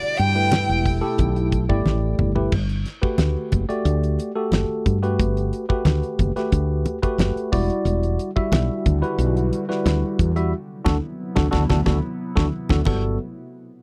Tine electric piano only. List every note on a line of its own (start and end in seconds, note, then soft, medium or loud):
0.35 0.97 A3 medium
0.35 0.97 E4 medium
0.35 0.97 G4 medium
0.35 0.97 B4 medium
1.01 1.63 A3 medium
1.01 1.63 E4 medium
1.01 1.63 G4 medium
1.01 1.63 A4 loud
1.69 2.31 A3 medium
1.69 2.31 E4 medium
1.69 2.31 G4 medium
1.69 2.31 D5 loud
2.35 2.52 A3 medium
2.35 2.52 E4 medium
2.35 2.52 G4 medium
2.35 2.52 B4 medium
3.02 3.64 A3 medium
3.02 3.64 F#4 medium
3.02 3.64 G4 medium
3.02 3.64 B4 medium
3.69 4.31 A3 medium
3.69 4.31 F#4 medium
3.69 4.31 G4 medium
3.69 4.31 D5 loud
4.35 4.97 A3 medium
4.35 4.98 F#4 medium
4.35 4.98 G4 medium
4.35 4.97 A4 medium
5.03 5.64 A3 medium
5.03 5.64 F#4 medium
5.03 5.64 G4 medium
5.03 5.64 B4 medium
5.69 6.31 A3 medium
5.69 6.31 F#4 medium
5.69 6.31 G4 medium
5.69 6.31 B4 medium
6.36 6.98 A3 medium
6.36 6.98 F#4 medium
6.36 6.98 G4 medium
6.36 6.98 B4 medium
7.02 7.52 A3 medium
7.02 7.51 F#4 medium
7.02 7.53 G4 medium
7.02 7.52 B4 loud
7.52 8.30 G3 medium
7.52 8.30 E4 medium
7.52 8.30 F#4 medium
7.52 8.30 D5 loud
8.36 8.97 G3 medium
8.36 8.98 E4 medium
8.36 8.98 F#4 medium
8.36 8.97 E5 medium
9.02 9.64 G3 medium
9.02 9.64 E4 medium
9.02 9.64 F#4 medium
9.02 9.64 B4 loud
9.69 10.31 G3 medium
9.69 10.31 E4 medium
9.69 10.31 F#4 medium
9.69 10.31 B4 loud
10.36 10.52 G3 medium
10.36 10.52 E4 medium
10.36 10.52 F#4 medium
10.36 10.52 E5 loud
10.85 10.96 D4 loud
10.85 10.96 F#4 loud
10.85 10.96 A4 loud
11.36 11.46 D4 medium
11.36 11.46 F#4 medium
11.36 11.46 A4 loud
11.51 11.63 D4 loud
11.51 11.63 F#4 loud
11.51 11.63 A4 loud
11.69 11.80 D4 loud
11.69 11.80 F#4 medium
11.69 11.80 A4 loud
11.86 11.97 D4 medium
11.86 11.97 F#4 medium
11.86 11.97 A4 medium
12.36 12.46 D4 medium
12.36 12.46 F#4 medium
12.36 12.46 A4 medium
12.70 12.80 D4 medium
12.70 12.80 F#4 medium
12.70 12.80 A4 medium
12.86 13.17 G3 medium
12.86 13.17 B3 medium
12.86 13.17 F#4 medium
12.86 13.17 A4 medium